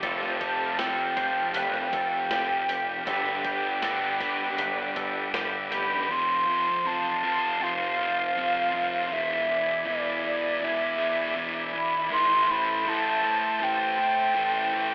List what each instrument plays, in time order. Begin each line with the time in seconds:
Already playing: analog synth pad G4
0.01 picked electric bass F1, distorted electric guitar F2 C3, overdriven electric guitar F3 A3 C4, clean electric guitar A4, analog synth pad F5 G5 A5, kick, open hi-hat
0.05 distorted electric guitar F3, overdriven electric guitar F4 A4
0.23 snare
0.41 clean electric guitar G4, flute A5, kick, open hi-hat
0.78 distorted electric guitar F2 C3 F3, clean electric guitar A4, flute G5, snare, open hi-hat
1.17 distorted electric guitar C3 F3, clean electric guitar C5, kick, open hi-hat
1.54 picked electric bass F1, distorted electric guitar F2 C3 F3, clean electric guitar B4, flute G5, open hi-hat
1.74 snare
1.93 picked electric bass F1, clean electric guitar A4, kick, open hi-hat
2.31 picked electric bass F1, distorted electric guitar F2 C3 F3, clean electric guitar G4, snare, open hi-hat
2.67 picked electric bass F1, distorted electric guitar C3 F3, clean electric guitar G4, open hi-hat
3.05 picked electric bass G1, distorted electric guitar G2 D3 G3, overdriven electric guitar G3 B3 D4, clean electric guitar A4, analog synth pad D5 B5 D6, flute G5, kick, open hi-hat
3.09 overdriven electric guitar B4
3.26 snare
3.45 clean electric guitar G4, kick, open hi-hat
3.81 distorted electric guitar G2 D3 G3, clean electric guitar A4, snare, open hi-hat
4.20 distorted electric guitar D3 G3, clean electric guitar B4, kick, open hi-hat
4.57 picked electric bass G1, distorted electric guitar G2 D3 G3, clean electric guitar B4, open hi-hat
4.96 picked electric bass G1, clean electric guitar A4, kick, open hi-hat
5.33 picked electric bass G1, distorted electric guitar G2 D3 G3, clean electric guitar G4, snare, open hi-hat
5.71 picked electric bass F1, distorted electric guitar D3 G3, clean electric guitar G4, flute B5, open hi-hat
6.08 distorted electric guitar F2 C3 F3, analog synth pad F4 C5 A5 C6, flute C6
6.47 distorted electric guitar C3 F3
6.85 distorted electric guitar F2 C3 F3, flute A5
7.24 distorted electric guitar C3 F3
7.61 distorted electric guitar F2 C3 F3, flute F5
7.99 distorted electric guitar C3 F3
8.36 distorted electric guitar F2 C3 F3
8.72 distorted electric guitar C3 F3
9.09 distorted electric guitar E2 B2 E3, analog synth pad E4 D5 G#5 B5, flute E5
9.48 distorted electric guitar B2 E3
9.85 distorted electric guitar E2 B2 E3, flute D5
10.24 distorted electric guitar B2 E3, flute D5
10.60 distorted electric guitar E2 B2 E3, flute E5
10.98 distorted electric guitar B2 E3
11.34 distorted electric guitar E2 B2 E3
11.73 distorted electric guitar B2 E3, flute B5
12.10 distorted electric guitar A2 E3 A3, analog synth pad C5 G5 A5, flute C6
12.49 distorted electric guitar E3 A3, flute B5
12.86 distorted electric guitar A2 E3 A3, flute A5
13.23 distorted electric guitar E3 A3
13.60 distorted electric guitar A2 E3 A3, flute G5
13.97 distorted electric guitar E3 A3
14.35 distorted electric guitar A2 E3 A3
14.72 distorted electric guitar E3 A3